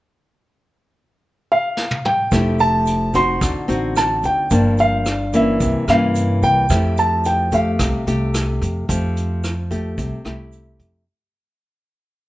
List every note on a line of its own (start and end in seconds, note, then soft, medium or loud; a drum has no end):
1.52 2.07 F5 medium
1.77 snare soft
1.91 high tom soft
2.05 2.62 G5 medium
2.05 mid tom soft
2.31 3.38 F1 medium
2.31 3.39 F3 soft
2.31 3.10 A3 medium
2.31 3.10 E4 medium
2.31 3.10 G4 medium
2.31 kick soft
2.31 cross-stick soft
2.31 closed hi-hat soft
2.31 shaker medium
2.59 3.16 A5 medium
2.59 closed hi-hat soft
2.59 shaker soft
2.86 closed hi-hat soft
2.86 shaker medium
3.14 3.65 C4 medium
3.14 3.65 D#4 medium
3.14 3.65 F#4 medium
3.14 4.00 C6 medium
3.14 kick soft
3.14 closed hi-hat soft
3.14 shaker soft
3.41 3.54 D2 medium
3.41 4.48 D3 soft
3.41 kick medium
3.41 cross-stick medium
3.41 closed hi-hat medium
3.41 shaker medium
3.68 4.20 A1 medium
3.68 4.46 C4 medium
3.68 4.47 D#4 medium
3.68 4.47 F#4 medium
3.68 closed hi-hat soft
3.68 shaker soft
3.96 4.23 A5 medium
3.96 cross-stick medium
3.96 closed hi-hat soft
3.96 shaker medium
4.23 4.49 D2 medium
4.23 4.76 G5 medium
4.23 kick soft
4.23 closed hi-hat soft
4.23 shaker soft
4.51 5.57 G1 loud
4.51 5.58 G2 medium
4.51 5.06 F3 soft
4.51 5.06 A#3 medium
4.51 5.06 D4 medium
4.51 kick soft
4.51 closed hi-hat medium
4.51 shaker medium
4.78 5.36 F5 medium
4.78 closed hi-hat soft
4.78 shaker soft
5.06 cross-stick medium
5.06 closed hi-hat soft
5.06 shaker medium
5.33 5.84 E3 medium
5.33 5.84 A#3 medium
5.33 5.85 C#4 soft
5.33 5.91 E5 medium
5.33 kick soft
5.33 closed hi-hat soft
5.33 shaker soft
5.60 5.74 C2 medium
5.60 6.68 C3 soft
5.60 kick soft
5.60 closed hi-hat medium
5.60 shaker medium
5.88 6.39 G2 medium
5.88 6.66 E3 medium
5.88 6.66 A#3 medium
5.88 6.66 C#4 medium
5.88 6.46 F5 medium
5.88 cross-stick soft
5.88 closed hi-hat soft
5.88 shaker soft
6.15 closed hi-hat soft
6.15 shaker medium
6.42 6.68 C2 medium
6.42 7.00 G5 medium
6.42 kick soft
6.42 closed hi-hat soft
6.42 shaker soft
6.69 7.76 F2 medium
6.69 7.77 F3 medium
6.69 7.48 A3 medium
6.69 7.48 E4 medium
6.69 7.48 G4 medium
6.69 kick medium
6.69 cross-stick medium
6.69 closed hi-hat soft
6.69 shaker medium
6.97 7.27 A5 medium
6.97 closed hi-hat soft
6.97 shaker soft
7.24 7.51 G5 medium
7.24 closed hi-hat soft
7.24 shaker medium
7.52 8.03 A3 soft
7.52 8.03 G4 medium
7.52 10.50 F5 medium
7.52 kick soft
7.52 closed hi-hat soft
7.52 shaker soft
7.79 7.92 C2 medium
7.79 8.86 C3 soft
7.79 kick medium
7.79 cross-stick medium
7.79 closed hi-hat medium
7.79 shaker medium
8.07 8.58 C2 medium
8.07 8.85 A3 soft
8.07 8.85 G4 medium
8.07 closed hi-hat soft
8.07 shaker soft
8.34 cross-stick medium
8.34 closed hi-hat soft
8.34 shaker medium
8.62 8.87 F2 medium
8.62 kick soft
8.62 closed hi-hat soft
8.62 shaker soft
8.89 9.94 F2 medium
8.89 9.95 F3 medium
8.89 9.43 A3 soft
8.89 9.43 G4 medium
8.89 kick soft
8.89 closed hi-hat soft
8.89 shaker medium
9.17 closed hi-hat soft
9.17 shaker soft
9.44 cross-stick medium
9.44 closed hi-hat soft
9.44 shaker medium
9.71 10.21 A3 medium
9.71 10.21 G4 medium
9.71 kick soft
9.71 closed hi-hat soft
9.71 shaker soft
9.98 10.11 C2 medium
9.98 11.04 C3 medium
9.98 kick medium
9.98 closed hi-hat medium
9.98 shaker medium
10.25 10.76 C2 medium
10.25 11.03 A3 medium
10.25 11.03 E4 medium
10.25 11.03 G4 medium
10.25 cross-stick medium
10.25 closed hi-hat soft
10.25 shaker soft
10.52 closed hi-hat soft
10.52 shaker medium
10.79 11.05 F2 medium
10.79 kick soft
10.79 closed hi-hat soft
10.79 shaker soft